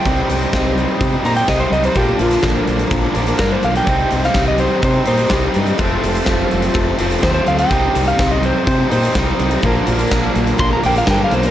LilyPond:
<<
  \new Staff \with { instrumentName = "Electric slide guitar" } { \time 4/4 \key c \dorian \tempo 4 = 125 g''4. r4 bes''16 g''16 ees''16 c''16 ees''16 c''16 | g'8 f'8 r2 bes'16 c''16 f''16 g''16~ | g''8. f''8 ees''16 c''8 c''8 c''8 r4 | r2. c''16 c''16 f''16 g''16~ |
g''8. f''8 ees''16 c''8 c''8 c''8 r4 | r2 c'''16 bes''16 g''16 f''16 g''16 f''16 c''16 bes'16 | }
  \new Staff \with { instrumentName = "Tonewheel organ" } { \time 4/4 \key c \dorian <c' ees' g' c''>1 | <bes d' f' bes'>1 | <c' ees' g' c''>1 | <c' f' a' c''>1 |
<c' ees' g' c''>1 | <bes d' f' bes'>1 | }
  \new Staff \with { instrumentName = "Steel-string acoustic guitar" } { \time 4/4 \key c \dorian <c g c' ees' g'>8 <g c' ees' g'>8 <c g c' ees' g'>8 <g c' ees' g'>8. <c' ees' g'>16 <g c' ees' g'>16 <c' ees' g'>16 <c g c' ees' g'>8 <g c' ees' g'>16 <c' ees' g'>16 | <bes, d f bes d' bes'>8 <f bes d' bes'>8 <bes, d f bes d' bes'>8 <f bes d' bes'>16 <f bes d' bes'>8 <f bes d' bes'>16 <f bes d' bes'>16 <f bes d' bes'>16 <bes, d f bes d' bes'>8 <f bes d' bes'>16 <f bes d' bes'>16 | <c g c' ees' g'>8 <g c' ees' g'>8 <c g c' ees' g'>8 <g c' ees' g'>16 <c' ees' g'>8 <c' ees' g'>16 <g c' ees' g'>8 <c g c' ees' g'>8 <g c' ees' g'>16 <c' ees' g'>16 | <f c' f' a'>8 <f c' f' a'>8 <f c' f' a'>8 <f c' f' a'>16 <c' f' a'>8 <c' f' a'>16 <f c' f' a'>16 <c' f' a'>16 <f c' f' a'>8 <f c' f' a'>16 <c' f' a'>16 |
<c g c' ees' g'>8 <g c' ees' g'>8 <c g c' ees' g'>8 <g c' ees' g'>8. <c' ees' g'>16 <g c' ees' g'>16 <c' ees' g'>16 <c g c' ees' g'>8 <g c' ees' g'>16 <c' ees' g'>16 | <bes, d f bes d' bes'>8 <f bes d' bes'>8 <bes, d f bes d' bes'>8 <f bes d' bes'>16 <f bes d' bes'>8 <f bes d' bes'>16 <f bes d' bes'>16 <f bes d'>16 <bes, d f bes d' bes'>8 <f bes d' bes'>16 <f bes d' bes'>16 | }
  \new Staff \with { instrumentName = "Overdriven electric guitar" } { \clef bass \time 4/4 \key c \dorian <c g c' ees'>2~ <c g c' ees'>8 <c g c' ees'>8 <c g c' ees'>4 | <bes, d f bes d'>2~ <bes, d f bes d'>8 <bes, d f bes d'>8 <bes, d f bes d'>4 | <c g c' ees'>2~ <c g c' ees'>8 <c g c' ees'>8 <c g c' ees'>4 | <f, c f a c'>2~ <f, c f a c'>8 <f, c f a c'>8 <f, c f a c'>4 |
<c g c' ees'>2~ <c g c' ees'>8 <c g c' ees'>8 <c g c' ees'>4 | <bes, d f bes d'>2~ <bes, d f bes d'>8 <bes, d f bes d'>8 <bes, d f bes d'>4 | }
  \new Staff \with { instrumentName = "Fingered electric bass" } { \clef bass \time 4/4 \key c \dorian c,8 c,8 c,4 c8 bes,8 c,8 c,8 | bes,,8 bes,,8 bes,,8 bes,,8 bes,,8 bes,,8 g,8 b,,8 | c,8 c,8 c,4 c8 bes,8 c,8 g,8 | f,,8 f,,8 f,,8 f,,8 f,,8 f,,8 ees,8 d,8 |
c,8 c,8 c,4 c8 bes,8 c,8 c,8 | bes,,8 bes,,8 bes,,8 bes,,8 bes,,8 bes,,8 g,8 b,,8 | }
  \new DrumStaff \with { instrumentName = "Drums" } \drummode { \time 4/4 <hh bd>8 hh8 <hh bd sn>8 hh8 <hh bd>8 hh16 hh16 <hh bd sn>8 hh16 hh16 | <hh bd>8 hh16 <hh sn>16 <hh bd sn>8 hh16 hh16 <hh bd>8 hh16 hh16 <hh bd sn>8 hh16 hh16 | <hh bd>8 hh16 sn16 <hh bd sn>8 hh8 <hh bd>8 hh16 hh16 <hh bd sn>8 hh16 hh16 | <hh bd>8 hh16 hh16 <hh bd sn>8 hh16 hh16 <hh bd>8 hh16 hh16 <hh bd sn>8 hh16 hh16 |
<hh bd>8 hh8 <hh bd sn>8 hh8 <hh bd>8 hh16 hh16 <hh bd sn>8 hh16 hh16 | <hh bd>8 hh16 hh16 <hh bd sn>8 hh16 hh16 <hh bd>8 hh16 hh16 <hh bd sn>8 hh16 hh16 | }
>>